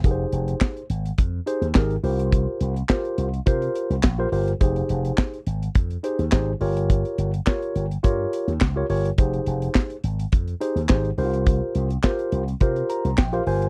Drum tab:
HH |x-xx-xxxx-xx-xox|x-xx-xxxxxxx--ox|xxxx-xxxxxxx--ox|xxxx-xxxx-xx--ox|
CP |----x-------x---|----x-------x---|----x-------x---|----x-------x---|
SD |----o-------o---|----o-------o---|----o-------o---|----o-------o---|
BD |o---o---o---o---|o---o---o---o---|o---o---o---o---|o---o---o---o---|

HH |xxxx-xxxxxxx-xox|x-xx-xxxxxxx-xox|
CP |----x-------x---|----x-------x---|
SD |----o-------o---|----o-------o---|
BD |o---o---o---o---|o---o---o---o---|